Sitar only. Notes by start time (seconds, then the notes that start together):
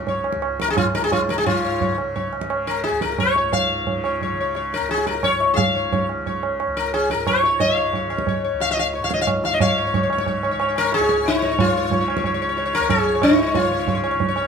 0.08 C#5
0.61 A#4
0.70 G#4
0.77 F4
0.95 A#4
1.04 G#4
1.13 F4
1.30 A#4
1.38 G#4
1.46 F4 C#5
1.64 C#5
1.82 C#5
2.16 C#5
2.67 A#4
2.84 G#4
3.02 A#4
3.20 C#5
3.37 C#5
3.53 F5
4.05 C#5
4.23 C#5
4.41 C#5
4.56 C#5
4.74 A#4
4.91 G#4
5.07 A#4
5.24 C#5
5.54 G#4 F5
5.75 C#5
5.92 C#5
6.27 C#5
6.77 A#4
6.94 G#4
7.11 A#4
7.27 C#5
7.45 C#5
7.60 F5
7.77 C#5
7.95 C#5
8.10 C#5
8.28 C#5
8.44 C#5
8.61 F5
8.71 D#5
8.79 F5
8.95 C#5
9.04 F5
9.09 F5
9.14 D#5
9.21 F5
9.45 F5
9.54 D#5
9.61 C#5 F5
9.69 C#5
9.78 C#5
9.87 C#5
9.94 C#5
10.03 C#5
10.12 C#5
10.20 C#5
10.28 C#5
10.44 C#5
10.51 C#5
10.61 C#5
10.68 C#5
10.78 A#4
10.84 C#5
10.94 G#4
11.02 C#5
11.11 C#5
11.28 D#4
11.36 C#5
11.43 C#5
11.52 C#5
11.60 F4
11.68 C#5
11.77 C#5
11.84 C#5
11.93 C#5
12.01 C#5
12.10 C#5
12.18 C#5
12.26 C#5
12.34 C#5
12.42 C#5
12.49 C#5
12.58 C#5
12.65 C#5
12.75 A#4
12.81 C#5
12.90 G#4
12.98 C#5
13.06 C#5
13.15 C#5
13.23 D#4
13.31 C#5
13.38 C#5
13.46 C#5
13.55 F4
13.63 C#5
13.71 C#5
13.79 C#5
13.88 C#5
13.95 C#5
14.04 C#5
14.11 C#5
14.28 C#5
14.37 C#5